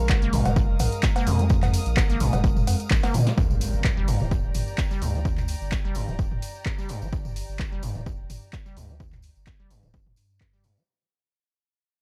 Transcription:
Already playing: ambient pad G#3 A#4, string section A#4 F5 C#6
0.00 sub bass A#1
0.09 acid bass A#2, kick, clap, tambourine, cowbell
0.22 sub bass G#1, acid bass A#3, closed hi-hat
0.33 sub bass A#1, acid bass A#2, mid tom, open hi-hat, tambourine
0.45 sub bass F1, acid bass A#3, closed hi-hat, mid tom, tambourine, cowbell
0.50 string section D#6
0.56 acid bass A#2, kick, tambourine
0.79 sub bass A#1, mid tom, open hi-hat, tambourine, cowbell
0.92 closed hi-hat, tambourine
1.02 acid bass A#2, kick, clap, tambourine
1.16 acid bass A#3, closed hi-hat, tambourine, cowbell
1.27 sub bass F2, acid bass A#2, open hi-hat, tambourine
1.39 acid bass A#3, closed hi-hat, tambourine
1.49 acid bass A#2, kick, tambourine
1.62 clap, closed hi-hat, mid tom, tambourine, cowbell
1.74 open hi-hat, tambourine
1.86 sub bass A#1, closed hi-hat, tambourine
1.97 acid bass A#2, kick, clap, tambourine, cowbell
2.10 sub bass G#1, acid bass A#3, closed hi-hat, tambourine
2.20 sub bass A#1, acid bass A#2, mid tom, open hi-hat, tambourine
2.33 sub bass F1, acid bass A#3, closed hi-hat, mid tom, tambourine, cowbell
2.44 acid bass A#2, kick, tambourine
2.56 mid tom, tambourine
2.67 sub bass F2, open hi-hat, tambourine, cowbell
2.80 closed hi-hat, tambourine
2.91 sub bass A#1, acid bass A#2, kick, snare, clap, tambourine
3.03 acid bass A#3, snare, closed hi-hat, tambourine, cowbell
3.14 acid bass A#2, sub bass A#2, open hi-hat, mid tom, tambourine
3.26 acid bass A#3, snare, closed hi-hat, tambourine
3.38 acid bass G2, string section G4, kick, tambourine, impact
3.50 string section D5, mid tom, tambourine
3.56 string section G5
3.61 open hi-hat, tambourine
3.66 string section A#5
3.73 sub bass G1, tambourine
3.84 acid bass G2, kick, clap, tambourine
3.97 sub bass F1, acid bass G3
4.08 sub bass G1, acid bass G2, mid tom, open hi-hat, tambourine
4.19 sub bass D1, acid bass G3, mid tom, tambourine
4.31 acid bass G2, kick, tambourine
4.54 sub bass G1, mid tom, open hi-hat, tambourine
4.68 tambourine
4.78 acid bass G2, kick, clap, tambourine
4.91 acid bass G3, tambourine
5.02 sub bass D2, acid bass G2, open hi-hat, tambourine
5.14 acid bass G3, tambourine
5.25 acid bass G2, kick, tambourine
5.38 clap, mid tom, tambourine
5.48 open hi-hat, tambourine
5.61 sub bass G1, tambourine
5.72 acid bass G2, kick, clap, tambourine
5.85 sub bass F1, acid bass G3
5.95 sub bass G1, acid bass G2, open hi-hat, tambourine
6.08 sub bass D1, acid bass G3, mid tom, tambourine
6.19 acid bass G2, kick, tambourine
6.32 mid tom
6.42 open hi-hat, tambourine
6.55 tambourine
6.65 acid bass G2, kick, clap, tambourine
6.78 acid bass G3, tambourine
6.89 acid bass G2, open hi-hat, tambourine
7.02 sub bass G1, acid bass G3, tambourine
7.12 acid bass G2, kick, tambourine
7.25 mid tom, tambourine
7.36 open hi-hat, tambourine
7.49 sub bass G1, tambourine
7.59 acid bass G2, kick, clap, tambourine
7.72 sub bass F1, acid bass G3
7.83 sub bass G1, acid bass G2, mid tom, open hi-hat, tambourine
7.95 sub bass D1, acid bass G3, mid tom, tambourine
8.06 acid bass G2, kick, tambourine
8.30 sub bass G1, mid tom, open hi-hat, tambourine
8.42 tambourine
8.53 acid bass G2, kick, clap, tambourine
8.66 acid bass G3, tambourine
8.77 sub bass D2, acid bass G2, open hi-hat, tambourine
8.89 acid bass G3, tambourine
9.00 acid bass G2, kick, tambourine
9.12 clap, mid tom, tambourine
9.22 open hi-hat, tambourine
9.36 sub bass G1, tambourine
9.46 acid bass G2, kick, clap, tambourine
9.60 sub bass F1, acid bass G3
9.70 sub bass G1, acid bass G2, open hi-hat, tambourine
9.83 sub bass D1, acid bass G3, mid tom, tambourine
9.94 acid bass G2, kick, tambourine
10.06 mid tom
10.16 sub bass G2, open hi-hat, tambourine
10.30 tambourine
10.41 acid bass G2, kick, clap, tambourine
10.53 acid bass G3, tambourine
10.64 acid bass G2, open hi-hat, tambourine
10.77 acid bass G3, tambourine

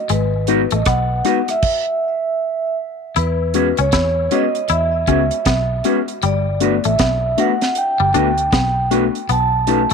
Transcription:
0.09 fingered electric bass G#1, clean electric guitar G#3, vibraphone B4, closed hi-hat
0.47 tine electric piano G#3 B3 D#4 F#4, clean electric guitar D#4 F#4 B4, closed hi-hat
0.71 fingered electric bass A1, clean electric guitar A3, vibraphone D#5, closed hi-hat
0.86 fingered electric bass B1, clean electric guitar B3, vibraphone F#5, kick, cross-stick, closed hi-hat
1.25 tine electric piano G#3 B3 D#4 F#4, clean electric guitar D#4 F#4 B4, cross-stick, closed hi-hat
1.48 vibraphone E5, cross-stick, closed hi-hat
1.62 kick, crash
3.16 fingered electric bass E2, clean electric guitar E4, vibraphone B4, closed hi-hat
3.54 tine electric piano G#3 B3 C#4 F#4, clean electric guitar C#4 G#4 B4, closed hi-hat
3.77 fingered electric bass C#2, clean electric guitar C#4, vibraphone C#5, closed hi-hat
3.92 fingered electric bass E2, clean electric guitar E4, kick, snare, closed hi-hat
4.31 tine electric piano G#3 B3 C#4 F#4, clean electric guitar C#4 G#4 B4, vibraphone D#5, closed hi-hat
4.55 closed hi-hat
4.68 fingered electric bass E2, clean electric guitar E4, vibraphone E5, closed hi-hat
5.07 fingered electric bass C#2, tine electric piano G#3 B3 C#4 F#4, clean electric guitar C#4 G#4 B4, kick, closed hi-hat
5.31 closed hi-hat
5.45 fingered electric bass B1, clean electric guitar B3, kick, snare, closed hi-hat
5.84 tine electric piano G#3 B3 C#4 F#4, clean electric guitar C#4 G#4 B4, closed hi-hat
6.08 tine electric piano C#4 F#4, closed hi-hat
6.22 fingered electric bass G1, clean electric guitar G3, vibraphone D5, closed hi-hat
6.60 tine electric piano A3 B3 D4 F#4, clean electric guitar D4 F#4 B4, closed hi-hat
6.84 fingered electric bass A1, clean electric guitar A3, vibraphone E5, closed hi-hat
6.99 fingered electric bass B1, clean electric guitar B3, kick, snare, closed hi-hat
7.37 tine electric piano A3 B3 D4 F#4, clean electric guitar D4 F#4 B4, vibraphone F#5, closed hi-hat
7.61 snare, closed hi-hat
7.75 vibraphone G5, closed hi-hat
8.00 fingered electric bass G1, clean electric guitar G3
8.14 fingered electric bass D2, tine electric piano A3 B3 D4 F#4, clean electric guitar D4 F#4 B4, closed hi-hat
8.38 closed hi-hat
8.52 fingered electric bass B1, clean electric guitar B3, kick, snare, closed hi-hat
8.91 tine electric piano A3 B3 D4 F#4, clean electric guitar D4 F#4 B4, closed hi-hat
9.15 closed hi-hat
9.29 fingered electric bass B1, clean electric guitar B3, vibraphone A5, closed hi-hat
9.67 tine electric piano A3 C#4 D#4 F#4, clean electric guitar D#4 A4 B4, closed hi-hat
9.90 closed hi-hat

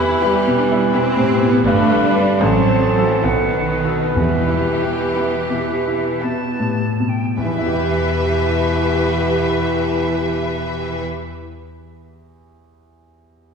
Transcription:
Already playing: grand piano E2 E4, bassoon E3, viola section E4, french horn section G4 B4, clarinet G4, cor anglais B4, flute B5
0.00 grand piano B4
0.22 cello section G3, grand piano G3, violin section G4 B4 E5, french horn section G4 B4, viola section G4
0.47 grand piano B2
0.59 viola section D4
0.72 grand piano E4
0.94 grand piano B2, cello section C4, viola section E4, violin section G4 B4 E5
1.17 grand piano A2
1.42 grand piano B2
1.48 cello section B3
1.64 double bass section G1, grand piano G2, bassoon D3, cello section A3, viola section D4, french horn section G4 B4, violin section G4 B4 D5, cor anglais B4, flute B5
1.90 grand piano G3
2.03 cello section G3
2.15 grand piano D4 B4
2.40 grand piano A1, double bass section A1, bassoon A2, cello section F#3, viola section C4, french horn section A4 C5, clarinet A4, cor anglais C5, violin section C5 F#5, flute A5
2.68 grand piano C4
2.96 grand piano F#4 A4
3.03 cello section E3
3.23 grand piano B1, double bass section B1, bassoon B2, cello section D#3, viola section B3, violin section A4 B4 F#5, french horn section A4 B4, cor anglais B4, flute F#5
3.54 grand piano B3
3.71 viola section D#4
3.85 grand piano F#4 A4
4.16 grand piano E2, timpani E2, double bass section E2, cello section E3, french horn section G4 B4, clarinet G4, viola section G4, flute E5
4.47 grand piano E4
4.82 grand piano G4
5.15 grand piano B3, violin section G4 B4 E5, flute E5
5.50 grand piano B2
5.87 grand piano E4
6.22 grand piano B2, violin section G4 B4 E5, flute A5
6.60 grand piano A2
7.00 grand piano B2
7.09 flute G5
7.37 grand piano E2, timpani E2, double bass section E2, bassoon B2, cello section E3, french horn section E4 G4, clarinet G4, viola section G4, violin section B4 E5, cor anglais B4, flute E5
7.45 grand piano E3
7.52 grand piano B3
7.58 grand piano E4
7.66 grand piano G4
7.73 grand piano E5

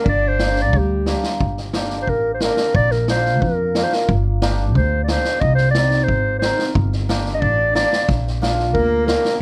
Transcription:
0.03 upright bass G1, cello D4, kick
0.09 clarinet D5
0.28 clarinet C5
0.39 hammered dulcimer A#3 D4 G4, snare
0.54 cello D4, snare
0.62 clarinet D5
0.70 upright bass D2, cello G3, kick
0.78 clarinet G4
1.06 hammered dulcimer A#3 D4 G4, snare
1.24 snare
1.41 upright bass G1, kick
1.57 snare
1.73 hammered dulcimer A#3 D4 G4, snare
1.90 snare
2.02 clarinet C5
2.07 upright bass A1, clarinet A#4, kick
2.35 clarinet C5
2.40 hammered dulcimer A#3 D4 G4, clarinet A#4, snare
2.57 snare
2.75 upright bass A#1, clarinet D5, kick
2.91 clarinet A#4, snare
3.08 hammered dulcimer A#3 D4 F4, clarinet C5, snare
3.25 snare
3.42 upright bass F2, clarinet A#4, kick
3.75 hammered dulcimer A#3 D4 F4, clarinet A#4, snare
3.84 clarinet C5
3.92 clarinet A#4, snare
4.09 upright bass G1, kick
4.42 hammered dulcimer A#3 D4 G4, snare
4.75 upright bass D2, clarinet C5, kick
5.04 clarinet D5
5.08 hammered dulcimer A#3 D4 G4, clarinet C5, snare
5.24 snare
5.41 upright bass C2, clarinet D#5, kick
5.55 clarinet C5, snare
5.71 clarinet D5, snare
5.76 hammered dulcimer C4 D#4 G4
5.91 snare
6.04 clarinet C5
6.08 upright bass G#1, kick
6.39 clarinet C5, snare
6.44 hammered dulcimer C4 D#4 A#4
6.59 snare
6.75 upright bass G1, kick
6.92 snare
7.09 hammered dulcimer A#3 D4 G4, snare
7.26 snare
7.34 clarinet D#5
7.38 upright bass A1, cello D4, clarinet D5, kick
7.74 hammered dulcimer A#3 D4 G4, cello D4, clarinet D5, snare
7.93 snare
8.09 upright bass A#1, kick, snare
8.27 snare
8.42 hammered dulcimer A#3 D4 F4, snare
8.59 snare
8.74 upright bass D2, cello A#3, clarinet A#4, kick
9.07 hammered dulcimer A#3 D4 G4, clarinet A#4, snare
9.25 snare

